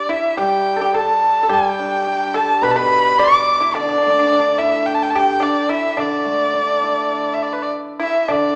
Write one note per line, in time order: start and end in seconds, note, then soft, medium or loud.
0.00 0.11 D5 medium
0.09 0.36 E4 medium
0.09 0.40 E5 medium
0.37 1.47 G3 medium
0.37 0.74 G4 medium
0.37 0.95 G5 medium
0.77 0.80 A4 soft
0.81 0.94 G4 medium
0.94 1.40 A4 medium
0.94 1.54 A5 medium
1.43 1.49 A4 medium
1.48 3.18 G3 medium
1.48 2.30 G4 medium
1.53 2.37 G5 medium
1.79 2.91 D4 soft
2.07 3.19 G4 soft
2.34 2.61 A4 medium
2.34 2.65 A5 medium
2.61 3.74 B2 medium
2.61 2.75 B4 medium
2.61 2.73 B5 medium
2.71 2.78 A5 medium
2.76 3.16 B4 medium
2.76 3.20 B5 loud
3.18 3.58 D5 medium
3.18 3.77 D6 loud
3.60 3.74 E4 medium
3.74 5.42 D3 medium
3.74 3.81 D4 medium
3.74 4.60 D5 medium
3.83 3.87 D4 soft
3.89 3.96 D4 medium
3.98 4.01 D4 soft
4.03 5.16 A3 soft
4.03 4.09 D4 soft
4.10 4.18 D4 soft
4.19 4.26 D4 soft
4.27 4.31 D4 soft
4.32 5.43 D4 soft
4.32 4.39 D4 medium
4.40 4.48 D4 medium
4.58 4.85 E4 medium
4.58 4.88 E5 medium
4.86 4.96 G5 medium
4.95 5.04 A5 medium
5.03 5.12 G5 medium
5.11 5.20 A5 medium
5.15 5.39 G4 medium
5.15 5.44 G5 medium
5.40 5.67 D4 medium
5.40 5.71 D5 medium
5.69 5.96 E4 medium
5.69 6.02 E5 medium
5.97 7.70 D3 medium
5.97 7.28 D4 medium
5.97 7.35 D5 medium
6.25 7.41 A3 soft
6.54 7.70 D4 soft
6.83 8.00 E4 soft
7.34 7.44 E5 medium
7.43 7.54 D5 medium
7.53 7.64 B4 medium
7.62 7.71 D5 soft
8.00 8.27 E4 medium
8.00 8.23 E5 medium
8.00 8.25 E5 medium
8.23 8.29 E5 soft
8.23 8.33 E5 medium
8.28 8.55 D3 medium
8.28 8.55 D4 medium
8.28 8.55 D5 medium
8.32 8.55 D5 medium